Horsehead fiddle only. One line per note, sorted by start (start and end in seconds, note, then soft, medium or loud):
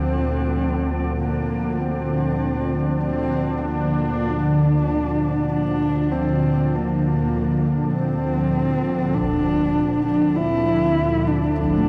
0.00 1.16 C4 medium
1.20 1.82 A#3 medium
1.81 3.03 C4 medium
3.04 3.58 C4 loud
3.58 3.67 C4 medium
3.66 4.31 A#3 medium
4.30 5.51 D4 medium
5.52 6.13 D4 medium
6.12 6.77 C4 medium
6.75 7.93 A#3 medium
7.94 9.16 C4 medium
9.15 10.05 D4 loud
10.05 10.38 D4 medium
10.36 11.29 E4 loud
11.28 11.59 D4 medium
11.59 11.89 D4 loud